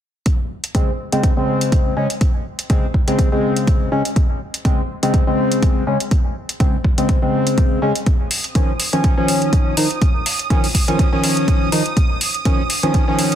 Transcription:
0.26 kick, closed hi-hat
0.64 closed hi-hat
0.75 C#3 G#3 C4, kick, closed hi-hat
1.12 C#3 G#3 C4, closed hi-hat
1.23 kick, closed hi-hat
1.37 C#3 G#3 C4
1.61 closed hi-hat
1.72 kick, closed hi-hat
1.97 C#3 G#3 C#4
2.10 closed hi-hat
2.21 kick, closed hi-hat
2.59 closed hi-hat
2.70 C#3 G#3 C4, kick, closed hi-hat
2.94 kick
3.08 C#3 G#3 C4, closed hi-hat
3.19 kick, closed hi-hat
3.32 C#3 G#3 C4
3.56 closed hi-hat
3.67 kick, closed hi-hat
3.92 C#3 G#3 C#4
4.05 closed hi-hat
4.16 kick, closed hi-hat
4.54 closed hi-hat
4.65 C#3 G#3 C4, kick, closed hi-hat
5.03 C#3 G#3 C4, closed hi-hat
5.14 kick, closed hi-hat
5.27 C#3 G#3 C4
5.52 closed hi-hat
5.63 kick, closed hi-hat
5.87 C#3 G#3 C#4
6.00 closed hi-hat
6.11 kick, closed hi-hat
6.49 closed hi-hat
6.60 C#3 G#3 C4, kick, closed hi-hat
6.84 kick
6.98 C#3 G#3 C4, closed hi-hat
7.09 kick, closed hi-hat
7.22 C#3 G#3 C4
7.47 closed hi-hat
7.58 kick, closed hi-hat
7.82 C#3 G#3 C#4
7.95 closed hi-hat
8.06 D#6, kick, closed hi-hat
8.31 open hi-hat
8.44 closed hi-hat
8.55 D#3 F3 C#4, kick, closed hi-hat
8.80 open hi-hat
8.93 D#3 F3 C#4, closed hi-hat
9.04 kick, closed hi-hat
9.17 D#3 F3 C#4
9.28 open hi-hat
9.42 closed hi-hat
9.53 kick, closed hi-hat
9.77 D#3 F3 D#4, open hi-hat
9.91 closed hi-hat
10.02 kick, closed hi-hat
10.26 open hi-hat
10.39 closed hi-hat
10.50 D#3 F3 C#4, kick, closed hi-hat
10.64 open hi-hat
10.75 kick, open hi-hat
10.88 D#3 F3 C#4, closed hi-hat
10.99 kick, closed hi-hat
11.12 D#3 F3 C#4
11.24 open hi-hat
11.37 closed hi-hat
11.48 kick, closed hi-hat
11.72 D#3 F3 D#4, open hi-hat
11.86 closed hi-hat
11.97 kick, closed hi-hat
12.21 open hi-hat
12.34 closed hi-hat
12.45 D#3 F3 C#4, kick, closed hi-hat
12.70 open hi-hat
12.83 D#3 F3 C#4, closed hi-hat
12.94 kick, closed hi-hat
13.08 D#3 F3 C#4
13.19 open hi-hat
13.32 closed hi-hat

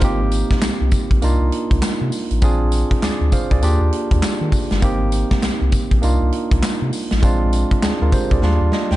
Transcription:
Already playing: F4 A#4
0.01 G#1 A#3 C4 D#4 G4, kick, closed hi-hat, tambourine
0.32 closed hi-hat, tambourine
0.51 kick, snare, closed hi-hat
0.62 C2, snare, clap, closed hi-hat, tambourine
0.81 C2
0.92 kick, closed hi-hat, tambourine
1.11 A#1, kick, closed hi-hat
1.22 C2 A#3 D4 D#4 F4, closed hi-hat, tambourine
1.41 C2
1.52 closed hi-hat
1.71 C2, kick, closed hi-hat
1.82 snare, clap, closed hi-hat, tambourine
2.01 C3
2.12 open hi-hat, tambourine
2.31 A1, closed hi-hat
2.42 A#1 C4 D4 F4 G#4, kick, closed hi-hat, tambourine
2.72 closed hi-hat, tambourine
2.91 kick, closed hi-hat
3.02 D2 G#4 D5, snare, clap, closed hi-hat, tambourine
3.21 D2
3.32 C5 F5, kick, closed hi-hat, tambourine
3.51 C2 G#4 D5, kick, closed hi-hat
3.62 D#2 A#3 D4 F4 G4, closed hi-hat, tambourine
3.81 D#2
3.92 closed hi-hat
4.11 D#2, kick, closed hi-hat
4.22 snare, clap, closed hi-hat, tambourine
4.41 D#3
4.52 kick, open hi-hat, tambourine
4.71 G1, snare, closed hi-hat
4.82 G#1 A#3 C4 D#4 G4, kick, closed hi-hat, tambourine
5.12 closed hi-hat, tambourine
5.31 kick, snare, closed hi-hat
5.42 C2, snare, clap, closed hi-hat, tambourine
5.61 C2
5.72 kick, closed hi-hat, tambourine
5.91 A#1, kick, closed hi-hat
6.02 C2 A#3 D4 D#4 F4, closed hi-hat, tambourine
6.22 C2
6.32 closed hi-hat
6.51 C2, kick, closed hi-hat
6.63 snare, clap, closed hi-hat, tambourine
6.82 C3
6.93 open hi-hat, tambourine
7.11 A1, snare, closed hi-hat
7.22 A#1 G#3 C4 D4 F4, kick, closed hi-hat, tambourine
7.53 closed hi-hat, tambourine
7.71 kick, closed hi-hat
7.83 D2 D4 G#4, snare, clap, closed hi-hat, tambourine
8.02 D2 F4 A#4
8.12 G4 C5, kick, closed hi-hat, tambourine
8.31 C2 G#4 D5, kick, closed hi-hat
8.42 D#2 G3 A#3 D4 F4, snare
8.61 D#2
8.72 D#5, snare
8.91 D#2 G5, snare

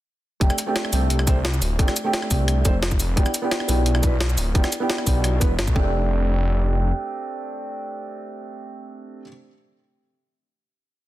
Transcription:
0.40 F1 A3 C4 D4 G4, kick, closed hi-hat
0.50 cross-stick, shaker
0.58 closed hi-hat, shaker
0.66 A3 C4 D4 G4
0.76 snare, closed hi-hat
0.85 cross-stick
0.92 C2 A3 C4 D4 G4, open hi-hat, shaker
1.10 closed hi-hat
1.19 cross-stick
1.26 A3 C4 D4 C5, kick, closed hi-hat, shaker
1.45 snare, closed hi-hat
1.54 shaker
1.62 D1, open hi-hat, shaker
1.78 F1 A3 C4 D4 G4, kick, closed hi-hat
1.88 cross-stick, snare, shaker
1.96 closed hi-hat, shaker
2.04 A3 C4 D4 G4
2.13 snare, closed hi-hat
2.22 cross-stick
2.30 C2 A3 C4 D4 G4, kick, open hi-hat, shaker
2.48 cross-stick, closed hi-hat
2.64 F1 A3 C4 D4 C5, kick, closed hi-hat, shaker
2.83 snare, closed hi-hat
2.91 kick, shaker
3.00 open hi-hat, shaker
3.16 E1 B3 D4 E4 G4, kick, closed hi-hat
3.26 cross-stick, shaker
3.34 closed hi-hat, shaker
3.42 B3 D4 E4 G4
3.51 snare, closed hi-hat
3.60 cross-stick
3.68 B1 B3 D4 E4 G4, open hi-hat, shaker
3.86 closed hi-hat
3.95 cross-stick
4.02 B3 D4 E4 B4, kick, closed hi-hat, shaker
4.21 snare, closed hi-hat
4.29 shaker
4.38 D1, open hi-hat, shaker
4.54 E1 B3 D4 E4 G4, kick, closed hi-hat
4.64 cross-stick, snare, shaker
4.72 closed hi-hat, shaker
4.80 B3 D4 E4 G4
4.90 snare, closed hi-hat
4.98 cross-stick
5.05 B1 B3 D4 E4 G4, kick, open hi-hat, shaker
5.24 cross-stick, closed hi-hat
5.40 E1 B3 D4 E4 B4, kick, closed hi-hat, shaker
5.58 G1, snare, closed hi-hat
5.67 B1, kick, shaker
5.72 F1 A3 C4, kick
5.77 D4 G4

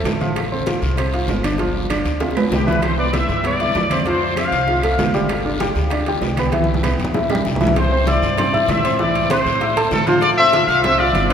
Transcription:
Already playing: A3 A4
0.04 A1, high bongo, low bongo, high conga, high timbale, low timbale, short guiro
0.21 F3 F4, high bongo, high conga, short guiro
0.36 high bongo, high conga, high timbale, long guiro, claves
0.52 C4 C5, high conga
0.66 F4 F5, high bongo, high conga, high timbale, low timbale, short guiro
0.82 C2, high bongo, high conga, short guiro
0.97 C4 C5, high bongo, high conga, high timbale, long guiro, claves
1.13 F4 F5, high bongo, high conga, high timbale
1.28 G1, high bongo, low bongo, high conga, low timbale, short guiro
1.43 D4 D5, high bongo, high conga, high timbale, short guiro, claves
1.58 F3 F4, high bongo, high conga, high timbale, long guiro
1.76 high conga
1.90 D4 D5, high bongo, high conga, high timbale, low timbale, short guiro, claves
2.04 D2, high bongo, high conga, high timbale, short guiro
2.20 F4 F5, high bongo, high conga, high timbale, long guiro
2.31 high bongo
2.35 B3 B4, high conga, low timbale, claves
2.51 C2 G4, low bongo, high conga, low timbale, short guiro
2.67 E3 E4 B4, high conga, low timbale, short guiro
2.73 low bongo
2.82 C5, high bongo, high conga, high timbale, long guiro, claves
2.97 B3 B4 D5, high conga
3.13 E4 E5, high bongo, high conga, high timbale, low timbale, short guiro
3.28 G2, high bongo, high conga, short guiro
3.44 B3 B4 D5, high bongo, high conga, high timbale, long guiro, claves
3.60 E4 E5, high bongo, high conga, high timbale
3.75 F2, high bongo, low bongo, high conga, low timbale, short guiro
3.90 C4 C5, high bongo, high conga, high timbale, short guiro, claves
4.05 F3 F4 C5, high bongo, high conga, high timbale, long guiro
4.21 high conga
4.36 C4 C5 F5, high bongo, high conga, high timbale, low timbale, short guiro, claves
4.52 C2, high bongo, high conga, high timbale, short guiro
4.68 F4 F5, high bongo, high conga, long guiro
4.82 A3 A4, high bongo, high conga, high timbale, claves
4.98 G1, high bongo, low bongo, high conga, high timbale, low timbale, short guiro
5.14 G3 G4, high bongo, high conga, short guiro
5.29 high bongo, high conga, high timbale, long guiro, claves
5.45 D4 D5, high conga
5.60 G4 G5, high bongo, high conga, high timbale, low timbale, short guiro
5.75 D2, high bongo, high conga, short guiro
5.90 D4 D5, high bongo, high conga, high timbale, long guiro, claves
6.06 G4 G5, high bongo, high conga, high timbale
6.21 C2, high bongo, low bongo, high conga, low timbale, short guiro
6.37 B3 B4, high bongo, high conga, high timbale, short guiro, claves
6.52 E3 E4, high bongo, high conga, high timbale, long guiro
6.64 high conga
6.74 low conga
6.83 B3 B4, high bongo, low conga, high timbale, low timbale, short guiro, claves
6.99 E2, high bongo, high timbale, short guiro
7.05 low conga
7.14 E4 E5, high bongo, low conga, long guiro
7.30 G3 G4, high bongo, high timbale, claves
7.35 low conga
7.45 C2, low bongo, short guiro
7.56 low conga
7.61 E3 E4, low bongo, low timbale, short guiro
7.67 low conga
7.76 C5, high bongo, high conga, high timbale, long guiro
7.92 C4 C5 C6, high conga
8.07 E4 D5 E5 E6, high bongo, high conga, high timbale, short guiro
8.22 G2, high bongo, high conga, short guiro
8.37 C4 C5 C6, high bongo, high conga, low conga, high timbale, long guiro
8.53 E4 E5 E6, high bongo, high conga, low conga
8.68 A2 E5, high bongo, low bongo, high conga, high timbale, low timbale, short guiro
8.84 C4 C5 C6, high bongo, high conga, high timbale, short guiro
8.99 E3 E4 D5 E5, high bongo, high conga, long guiro
9.15 high conga, high timbale
9.30 C4 C5 C6, high bongo, high conga, high timbale, short guiro
9.45 A2, high bongo, high conga, short guiro
9.60 E4 E5 E6, high bongo, high conga, high timbale, long guiro
9.76 A3 A4 A5, high bongo, high conga, high timbale
9.91 A2 A4, high bongo, low bongo, high conga, low timbale, short guiro
10.07 F3 F4 C5 F5, high bongo, high conga, high timbale, short guiro
10.21 D5, high bongo, high conga, high timbale, long guiro
10.38 C4 C5 E5 C6
10.53 F4 F5 F6, high bongo, high conga, high timbale, short guiro
10.67 C2 F5, high bongo, high conga, short guiro
10.83 C4 C5 E5 C6, high bongo, high conga, low conga, high timbale, long guiro
10.98 F4 D5 F5 F6, high bongo, high conga
11.13 G1, high bongo, low bongo, high conga, high timbale, short guiro
11.29 D4 B4 D5 D6, high bongo

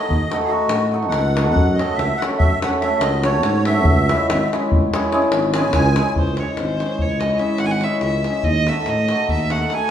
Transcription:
Already playing: D#5
0.01 davul high
0.09 D#2, davul low
0.30 A3 D#4 F#4 A4, davul high
0.41 G#4, davul high
0.47 A3 D#4 F#4
0.51 F#4 A4
0.69 A2, davul high
0.92 A3 D#4 F#4 A4
1.03 davul high
1.09 C#2 F#5, davul high
1.25 davul high
1.35 A3 D#4 F#4 A4, davul high
1.46 F#5, davul high
1.55 F#2, davul low
1.74 D#5
1.79 A3 C#4 F#4 A4, davul high
1.94 C#2 E5
1.99 davul high
2.17 F#5
2.22 A3 C#4 F#4 A4, davul high
2.31 davul high
2.38 F#2 E5, davul low
2.61 A3 C#4 F#4 A4 F#5, davul high
2.73 davul high
2.81 A3 C#4 F#4 A4 E5, davul high
2.99 C#2 D#5, davul high
3.24 A3 C#4 F#4 A4 C#5, davul high
3.33 davul high
3.43 G#2, davul high
3.55 davul high
3.65 A3 C#4 F#4 A4 E5, davul high
3.76 davul high
3.85 C#2, davul low
3.97 davul high
4.09 G#3 C#4 E4 G#4, davul high
4.20 davul high
4.28 G#1 E5, davul high
4.42 davul high
4.53 G#3 C#4 E4 G#4, davul high
4.63 davul high
4.72 C#2, davul low
4.94 G#3 C#4 E4 G#4, davul high
5.03 davul high
5.12 G#3 C#4 E4 G#4, davul high
5.22 davul high
5.31 G#1, davul high
5.42 davul high
5.52 G#3 G#5, davul high
5.57 C#4 E4 G#4
5.64 davul high
5.73 C#2 G#5, davul high, davul low
5.85 davul high
5.96 G#3 C#4 E4 G#4, davul high
6.07 davul high
6.15 C#2 C5, davul low
6.27 davul high
6.37 G#3 C#4 C#5, davul high
6.41 E4 G#4
6.48 davul high
6.57 G#1 C5, davul high
6.69 davul high
6.80 G#3 C#4 E4 G#4, davul high
6.90 davul high
6.99 C#2 C#5, davul low
7.11 davul high
7.20 G#3 C#4 E4 G#4 D#5, davul high
7.38 G#3 C#4 E4 G#4 E5, davul high
7.58 G#1 F#5, davul high
7.66 G#5
7.71 F#5, davul high
7.81 G#3 C#4 E4 G#4 E5, davul high
8.01 C#2 E5, davul high
8.24 G#3 C#4 E4 G#4, davul high
8.43 D#2 D#5, davul low
8.55 davul high
8.67 A3 D#4 F#4 A4 E5, davul high
8.77 davul high
8.86 A2 D#5, davul high
8.98 davul high
9.09 A3 D#4 F#4 A4, davul high
9.19 davul high
9.29 D#2 E5, davul low
9.40 davul high
9.50 A3 D#4 F#4 A4 F#5, davul high
9.70 A3 D#4 F#4 A4 G#5, davul high

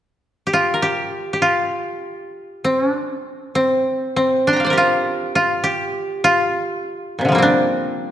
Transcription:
0.47 G4
0.53 F4
0.74 A#4
0.82 G4
1.33 G4
1.42 F4
2.64 C4
2.90 D4
3.55 C4
4.16 C4
4.47 D4 C6
4.53 G5 A#5
4.60 F5
4.65 C5 D5
4.70 G4 A#4
4.78 F4
5.35 F4
5.64 G4
6.24 F4
7.19 A#2 C3
7.25 D3 F3
7.32 G3 A#3
7.38 C4
7.42 D4

